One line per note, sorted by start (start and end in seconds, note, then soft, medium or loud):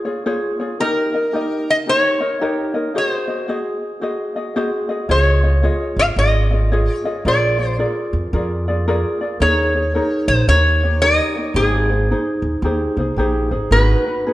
0.00 0.57 C#5 medium
0.05 0.25 F4 soft
0.05 0.25 G#4 medium
0.05 0.25 C#5 medium
0.26 0.60 F4 medium
0.26 0.60 G#4 medium
0.26 0.60 C5 medium
0.26 0.58 C#5 loud
0.60 0.80 F4 soft
0.60 0.80 G#4 medium
0.60 0.80 C#5 medium
0.80 1.14 D#4 medium
0.80 1.14 G4 medium
0.80 1.71 A#4 medium
0.80 1.14 A#4 medium
0.80 1.13 D#5 medium
1.14 1.33 D#4 soft
1.14 1.33 A#4 soft
1.14 1.34 D#5 soft
1.33 1.88 D#4 medium
1.33 1.86 G4 medium
1.33 1.87 A#4 medium
1.33 1.89 D#5 medium
1.70 1.75 D#5 medium
1.87 2.22 D#4 medium
1.87 2.21 G4 medium
1.87 2.20 A#4 medium
1.87 2.97 C#5 loud
1.87 2.19 D#5 medium
2.20 2.40 D#4 soft
2.20 2.41 A#4 soft
2.20 2.41 D#5 medium
2.41 2.75 D#4 medium
2.41 2.75 G4 medium
2.41 2.74 A#4 medium
2.41 2.73 D#5 medium
2.74 2.95 D#4 soft
2.74 2.95 A#4 medium
2.74 2.95 D#5 medium
2.95 3.29 F#4 medium
2.95 3.28 G#4 medium
2.95 3.29 C5 medium
2.95 3.47 C5 medium
2.95 3.27 D#5 medium
3.28 3.48 F#4 soft
3.28 3.48 G#4 soft
3.28 3.48 D#5 soft
3.48 4.01 F#4 medium
3.48 4.02 G#4 medium
3.48 4.00 C5 medium
3.48 4.03 D#5 medium
4.01 4.36 F#4 medium
4.01 4.36 G#4 medium
4.01 4.36 C5 medium
4.01 4.35 D#5 medium
4.36 4.55 F#4 soft
4.36 4.55 G#4 medium
4.36 4.56 D#5 medium
4.56 4.90 F#4 medium
4.56 4.89 G#4 medium
4.56 4.90 C5 medium
4.56 4.88 D#5 medium
4.89 5.09 F#4 soft
4.89 5.09 G#4 medium
4.89 5.10 D#5 medium
5.09 5.66 C#2 medium
5.09 5.44 F4 medium
5.09 5.44 G#4 medium
5.09 5.44 C#5 medium
5.09 6.01 C#5 medium
5.09 5.42 D#5 medium
5.44 5.62 F4 soft
5.44 5.63 G#4 soft
5.44 5.63 D#5 soft
5.63 6.18 F4 medium
5.63 6.19 G#4 medium
5.63 6.17 C#5 medium
5.63 6.18 D#5 medium
5.96 6.10 G#1 medium
5.96 6.05 F5 medium
6.16 6.87 G#1 medium
6.16 6.52 F4 medium
6.16 6.52 G#4 medium
6.16 6.52 C#5 medium
6.16 6.96 D#5 medium
6.16 6.50 D#5 medium
6.51 6.71 F4 soft
6.51 6.71 G#4 soft
6.51 6.71 D#5 soft
6.72 7.06 F4 medium
6.72 7.05 G#4 medium
6.72 7.06 C#5 medium
6.72 7.04 D#5 medium
6.96 7.27 C#5 medium
7.05 7.25 F4 soft
7.05 7.25 G#4 medium
7.05 7.25 D#5 medium
7.25 7.82 A#1 medium
7.25 7.59 F4 medium
7.25 7.58 G#4 medium
7.25 7.59 A#4 medium
7.25 7.57 D5 medium
7.25 7.77 D5 medium
7.59 7.78 F4 soft
7.59 7.79 G#4 soft
7.59 7.79 D5 soft
7.79 8.33 F4 medium
7.79 8.34 G#4 medium
7.79 8.33 A#4 medium
7.79 8.33 D5 medium
8.13 8.26 F2 medium
8.33 9.03 F2 medium
8.33 8.67 F4 medium
8.33 8.67 G#4 medium
8.33 8.67 A#4 medium
8.33 8.67 D5 medium
8.68 8.86 F4 soft
8.68 8.87 G#4 medium
8.68 8.87 D5 medium
8.88 9.21 F4 medium
8.88 9.21 G#4 medium
8.88 9.21 A#4 medium
8.88 9.20 D5 medium
9.21 9.42 F4 soft
9.21 9.41 G#4 medium
9.21 9.41 D5 medium
9.40 9.97 D#2 medium
9.40 9.75 D#4 medium
9.40 9.75 G#4 medium
9.40 9.75 A#4 medium
9.40 10.28 C#5 medium
9.40 9.74 C#5 medium
9.76 9.94 D#4 soft
9.76 9.95 G#4 soft
9.76 9.95 C#5 medium
9.95 10.49 D#4 medium
9.95 10.49 G#4 medium
9.95 10.48 A#4 medium
9.95 10.49 C#5 medium
10.28 10.41 A#1 medium
10.28 10.48 C5 medium
10.48 11.18 D#2 medium
10.48 10.83 D#4 medium
10.48 10.83 G4 medium
10.48 10.82 A#4 medium
10.48 11.04 C#5 loud
10.48 10.82 C#5 medium
10.84 11.03 D#4 soft
10.84 11.03 G4 soft
10.84 11.03 C#5 medium
11.02 11.37 D#4 medium
11.02 11.36 G4 medium
11.02 11.37 A#4 medium
11.02 11.35 C#5 medium
11.02 11.52 D#5 loud
11.36 11.56 D#4 soft
11.36 11.55 G4 soft
11.36 11.56 C#5 medium
11.54 12.12 G#1 medium
11.54 11.90 D#4 medium
11.54 11.90 G4 medium
11.54 13.13 G#4 medium
11.54 11.90 G#4 medium
11.54 11.89 C5 medium
11.90 12.10 D#4 soft
11.90 12.10 G#4 soft
11.90 12.10 C5 soft
12.11 12.64 D#4 medium
12.11 12.65 G#4 medium
12.11 12.64 C5 medium
12.42 12.56 D#2 medium
12.62 12.85 D#2 medium
12.62 12.98 D#4 medium
12.62 12.98 G4 medium
12.62 12.98 G#4 medium
12.62 12.97 C5 medium
12.97 13.15 C2 medium
12.97 13.18 D#4 soft
12.97 13.18 G#4 medium
12.97 13.18 C5 medium
13.16 13.47 A#1 medium
13.16 13.52 D#4 medium
13.16 13.52 G4 medium
13.16 13.51 G#4 loud
13.16 13.50 C5 medium
13.51 13.69 G#1 medium
13.51 13.72 D#4 soft
13.51 13.71 G#4 medium
13.51 13.71 C5 medium
13.71 13.93 G#1 medium
13.71 14.06 D#4 medium
13.71 14.06 F#4 medium
13.71 14.06 G#4 medium
13.71 14.33 B4 medium
13.71 14.05 B4 medium
14.06 14.26 D#4 soft
14.06 14.26 F#4 soft
14.06 14.26 B4 soft
14.27 14.33 D#4 medium
14.27 14.33 F#4 medium
14.27 14.33 G#4 medium
14.27 14.33 B4 medium